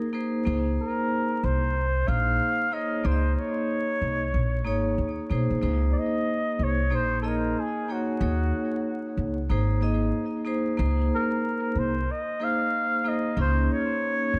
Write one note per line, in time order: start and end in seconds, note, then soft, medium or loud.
0.13 0.42 A#3 medium
0.13 0.42 D#4 medium
0.13 0.43 G#4 medium
0.13 0.43 C5 medium
0.45 0.76 C#2 medium
0.45 1.59 A#3 medium
0.45 1.59 D#4 medium
0.45 1.60 G#4 medium
0.45 1.60 C5 medium
0.81 1.46 A#4 medium
1.44 2.04 C2 medium
1.44 2.10 C5 medium
2.07 2.38 A#1 medium
2.07 2.65 A#3 medium
2.07 2.65 D#4 medium
2.07 2.65 G#4 medium
2.07 2.66 C5 medium
2.07 2.75 F5 loud
2.71 3.00 A#3 medium
2.71 3.01 D#4 medium
2.71 3.01 G#4 medium
2.71 3.01 C#5 medium
2.71 3.07 D#5 medium
3.04 3.34 C#2 loud
3.04 4.17 A#3 medium
3.04 4.18 D#4 medium
3.04 4.18 G#4 medium
3.04 3.35 C5 medium
3.04 3.13 D5 medium
3.12 4.21 D#5 medium
3.35 3.41 C5 medium
3.39 5.32 C#5 medium
4.01 4.31 C2 medium
4.34 4.66 A#1 medium
4.65 4.95 G#1 medium
4.65 5.23 A#3 medium
4.65 5.23 D#4 medium
4.65 5.23 G#4 medium
4.65 5.24 C#5 medium
4.98 5.17 D#2 medium
5.30 5.49 B1 medium
5.30 5.59 A#3 medium
5.30 5.59 D#4 medium
5.30 5.59 G#4 medium
5.30 5.60 C5 medium
5.50 5.62 C2 medium
5.61 5.92 C#2 medium
5.61 6.75 A#3 medium
5.61 6.75 D#4 medium
5.61 6.76 G#4 medium
5.61 6.76 C5 medium
5.92 6.00 D5 medium
5.98 6.65 D#5 loud
6.59 6.92 C2 medium
6.63 6.97 C#5 medium
6.90 7.52 A#1 medium
6.90 7.20 A#3 medium
6.90 7.20 D#4 medium
6.90 7.20 G#4 medium
6.90 7.21 C5 medium
6.95 7.20 C5 medium
7.22 7.81 A#3 medium
7.22 7.81 D#4 medium
7.22 7.81 G#4 medium
7.22 7.29 A4 medium
7.22 7.82 D#5 medium
7.28 7.61 A#4 medium
7.60 7.94 G#4 medium
7.88 8.17 A#3 medium
7.88 8.17 D#4 medium
7.88 8.18 G#4 medium
7.88 8.18 C#5 medium
7.92 9.19 F#4 medium
8.20 8.50 D#2 loud
8.20 9.34 A#3 medium
8.20 9.34 D#4 medium
8.20 9.34 G#4 medium
8.20 9.34 C#5 medium
9.17 9.47 C#2 medium
9.49 10.10 G#1 medium
9.49 9.78 A#3 medium
9.49 9.79 D#4 medium
9.49 9.79 G#4 medium
9.49 9.79 C5 loud
9.81 10.39 A#3 medium
9.81 10.39 D#4 medium
9.81 10.39 G#4 medium
9.81 10.40 D#5 medium
10.45 10.74 A#3 medium
10.45 10.75 D#4 medium
10.45 10.75 G#4 medium
10.45 10.76 C5 medium
10.77 11.09 C#2 loud
10.77 11.91 A#3 medium
10.77 11.92 D#4 medium
10.77 11.92 G#4 medium
10.77 11.92 C5 medium
11.15 11.81 A#4 medium
11.75 12.05 C2 medium
11.75 12.13 C5 medium
12.11 12.45 D#5 loud
12.40 12.97 A#3 medium
12.40 12.98 D#4 medium
12.40 12.98 G#4 medium
12.40 12.98 C5 medium
12.44 13.10 F5 loud
13.04 13.33 A#3 medium
13.04 13.33 D#4 medium
13.04 13.34 G#4 medium
13.04 13.34 C5 medium
13.08 13.39 D#5 loud
13.36 13.66 C#2 loud
13.36 14.39 A#3 medium
13.36 14.39 C#4 medium
13.36 14.39 D#4 medium
13.36 14.39 G#4 medium
13.40 13.74 C5 loud
13.72 14.39 C#5 loud
14.34 14.39 C2 medium